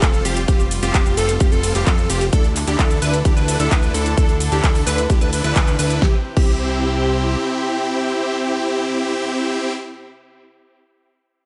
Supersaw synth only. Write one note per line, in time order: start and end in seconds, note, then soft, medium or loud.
0.02 0.22 C4 medium
0.02 0.22 F4 medium
0.02 0.22 A4 medium
0.25 0.39 C4 medium
0.25 0.39 F4 medium
0.25 0.39 G4 loud
0.48 0.62 C4 loud
0.48 0.62 F4 medium
0.48 0.62 G4 loud
0.83 0.92 C4 medium
0.83 0.92 F4 medium
0.83 0.92 G4 medium
0.94 1.14 C4 medium
0.94 1.14 F4 medium
0.94 1.14 G4 medium
1.17 1.31 C4 loud
1.17 1.31 F4 medium
1.17 1.31 A4 loud
1.41 1.49 C4 medium
1.41 1.49 F4 medium
1.41 1.49 G4 medium
1.52 1.72 C4 medium
1.52 1.72 F4 medium
1.52 1.72 A4 medium
1.75 1.84 C4 medium
1.75 1.84 F4 medium
1.75 1.84 G4 loud
1.87 2.07 C4 medium
1.87 2.07 F4 medium
1.87 2.07 A4 medium
2.10 2.23 C4 medium
2.10 2.23 F4 medium
2.10 2.23 G4 medium
2.33 2.46 D4 loud
2.33 2.46 E4 medium
2.33 2.46 A4 loud
2.67 2.76 D4 medium
2.67 2.76 E4 medium
2.67 2.76 G4 medium
2.79 2.99 D4 medium
2.79 2.99 E4 medium
2.79 2.99 A4 medium
3.02 3.16 D4 loud
3.02 3.16 E4 medium
3.02 3.16 B4 loud
3.25 3.34 D4 medium
3.25 3.34 E4 medium
3.25 3.34 G4 medium
3.37 3.57 D4 medium
3.37 3.57 E4 medium
3.37 3.57 B4 medium
3.60 3.69 D4 medium
3.60 3.69 E4 medium
3.60 3.69 A4 loud
3.71 3.92 D4 medium
3.71 3.92 E4 medium
3.71 3.92 B4 medium
3.95 4.08 D4 medium
3.95 4.08 E4 medium
3.95 4.08 A4 medium
4.18 4.31 D4 loud
4.18 4.31 E4 medium
4.18 4.31 A4 loud
4.52 4.61 D4 medium
4.52 4.61 E4 medium
4.52 4.61 G4 medium
4.64 4.83 D4 medium
4.64 4.83 E4 medium
4.87 5.00 D4 loud
4.87 5.00 E4 medium
4.87 5.00 B4 loud
5.10 5.19 D4 medium
5.10 5.19 E4 medium
5.10 5.19 G4 medium
5.21 5.42 D4 medium
5.21 5.42 E4 medium
5.21 5.42 B4 medium
5.44 5.54 D4 loud
5.44 5.54 E4 medium
5.44 5.54 B4 loud
5.56 5.76 D4 medium
5.56 5.76 E4 medium
5.56 5.76 B4 medium
5.79 5.99 D4 medium
5.79 5.99 E4 medium
5.79 5.99 B4 loud
6.02 6.15 C4 medium
6.02 6.15 E4 medium
6.02 6.15 G4 loud
6.37 9.73 C4 medium
6.37 9.73 E4 medium
6.37 9.73 G4 loud